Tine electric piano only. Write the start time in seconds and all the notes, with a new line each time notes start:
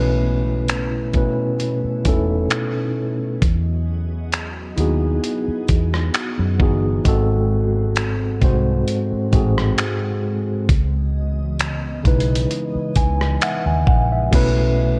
Already playing: B2 A3 C#4 E4 B4
1.13 B2 A3 C#4 E4
1.18 B4
2.04 B2 A3 C#4 D#4
2.08 A4
2.14 E4
4.77 B3 D#4 E4 F#4
4.81 G#4
6.58 E3 B3 D#4 F#4
6.63 G#4
7.04 G#2 G#3 C4 F#4
7.08 A4
8.40 G#2 G#3 C4 F#4
8.44 C5
9.30 G#2 G#3 C4 F#4
9.35 G#4
12.03 C#3 G#3 D#4 E4
12.08 B4
12.97 G#5
13.42 E5 F#5
13.67 G#5
13.88 F#5
14.12 E5
14.31 B2 A3 C#4 E4
14.35 B4